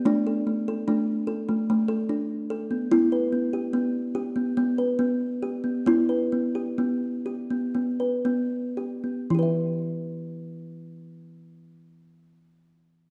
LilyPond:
\new Staff \with { instrumentName = "Kalimba" } { \time 7/8 \key e \minor \tempo 4 = 67 << { d'4 a4 a4. | e'4 r4 b4. | e'4 r4 b4. | <e e' g' b' e''>2.~ <e e' g' b' e''>8 | } \\ { a16 a'16 a16 a'16 d'8 a'16 a8 a'16 d'8 a'16 b16 | b16 b'16 b16 g'16 b8 g'16 b8 b'16 b8 g'16 b16 | b16 b'16 b16 g'16 b8 g'16 b8 b'16 b8 g'16 b16 | r2. r8 | } >> }